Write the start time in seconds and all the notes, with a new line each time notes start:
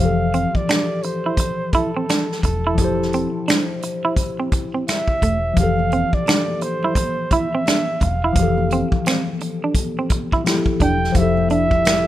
Already playing: F3
0.00 F1 E3 G4 F5
0.05 A4
0.34 C4, closed hi-hat
0.55 D5, kick
0.69 D4, finger snap, snare, closed hi-hat
1.03 C5, muted clean electric guitar stroke, closed hi-hat
1.26 E4
1.37 muted clean electric guitar stroke, kick, closed hi-hat
1.73 E4 A4, kick, closed hi-hat
1.97 C4
2.09 D4, finger snap, snare, closed hi-hat
2.32 snare
2.43 E1 A4, muted clean electric guitar stroke, kick, closed hi-hat
2.67 E4
2.75 F1 F3 E4, kick, closed hi-hat
2.81 G4 C5
3.02 snare
3.13 C4, closed hi-hat
3.48 D4, finger snap, snare, closed hi-hat
3.82 muted clean electric guitar stroke, closed hi-hat
4.05 E4
4.16 kick, closed hi-hat
4.40 C4
4.52 muted clean electric guitar stroke, kick, closed hi-hat
4.74 C4
4.88 E5, finger snap, snare, closed hi-hat
5.08 kick
5.22 E1 A3, kick, closed hi-hat
5.54 F1 E3 F3, kick, closed hi-hat, muted conga, low conga
5.58 G4 F5
5.63 A4
5.79 high conga
5.91 C4, closed hi-hat, muted conga
6.13 D5, kick
6.26 D4, finger snap, snare, closed hi-hat, muted conga
6.48 high conga
6.61 C5, muted clean electric guitar stroke, closed hi-hat
6.83 E4, low conga
6.95 muted clean electric guitar stroke, kick, closed hi-hat, muted conga, high conga
7.31 E4 E5, kick, closed hi-hat, high conga
7.55 C4
7.66 D4, finger snap, snare, closed hi-hat, muted conga, high conga
7.87 high conga
8.00 E1 F5, muted clean electric guitar stroke, kick, closed hi-hat, muted conga, low conga
8.24 E4
8.33 F1 E3 F3, kick, closed hi-hat, low conga
8.39 G4 A4
8.58 high conga
8.70 C4, closed hi-hat, muted conga
8.92 kick
9.06 C4, finger snap, snare, closed hi-hat
9.27 high conga
9.40 muted clean electric guitar stroke, closed hi-hat
9.64 D4
9.75 kick, closed hi-hat, muted conga, high conga
9.99 C4
10.10 muted clean electric guitar stroke, kick, closed hi-hat, high conga
10.32 E4, kick
10.44 F3 E4 G4, finger snap, snare, closed hi-hat, high conga
10.49 A4
10.66 kick, high conga
10.80 E1 D4 G5, kick, closed hi-hat, low conga
11.04 snare
11.12 F1 F3 E4, kick, closed hi-hat, muted conga, low conga
11.17 G4 E5
11.22 A4
11.37 high conga
11.50 D4 E5, closed hi-hat, muted conga
11.71 kick
11.84 finger snap, snare, closed hi-hat, muted conga